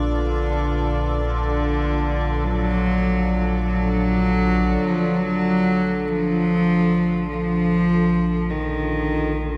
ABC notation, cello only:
X:1
M:4/4
L:1/16
Q:1/4=50
K:none
V:1 name="Cello" clef=bass
D,4 D,4 _G,4 G,4 | F, _G,3 F,4 F,4 _E,4 |]